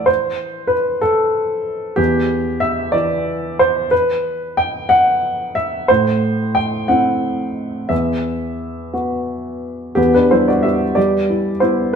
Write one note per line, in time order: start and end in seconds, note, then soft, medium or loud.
0.00 0.11 A2 soft
0.00 1.98 E3 soft
0.00 0.10 A4 medium
0.00 0.11 D5 medium
0.00 0.10 E5 medium
0.00 0.10 F#5 medium
0.06 0.71 C5 medium
0.67 1.02 B4 medium
1.01 1.97 A4 medium
1.96 3.87 E2 soft
1.96 2.61 G4 medium
2.60 2.93 E5 medium
2.92 5.88 E3 soft
2.92 3.58 D5 medium
3.59 3.92 C5 medium
3.91 4.56 B4 medium
4.57 4.90 G5 medium
4.89 5.55 F#5 medium
5.55 5.89 E5 medium
5.88 7.88 A2 soft
5.88 6.55 C5 medium
6.55 6.88 G5 medium
6.88 7.87 C4 soft
6.88 7.87 E4 soft
6.88 7.90 F#5 medium
7.89 9.93 E2 soft
7.89 8.93 E5 medium
8.93 9.93 B3 soft
8.93 9.93 F#4 soft
9.95 11.90 E2 soft
9.95 10.13 B3 soft
9.95 10.13 G4 medium
10.14 10.30 D4 soft
10.14 10.31 B4 medium
10.31 10.84 G3 soft
10.31 10.47 E4 soft
10.31 10.47 C5 medium
10.48 10.63 F#4 soft
10.48 10.64 D5 medium
10.63 11.16 B3 soft
10.63 10.94 G4 soft
10.63 10.96 E5 medium
10.95 11.49 G3 soft
10.95 11.57 G4 soft
10.95 11.61 D5 medium
11.30 11.60 E4 soft
11.60 11.95 B3 soft
11.60 11.92 E4 soft
11.60 11.93 C5 medium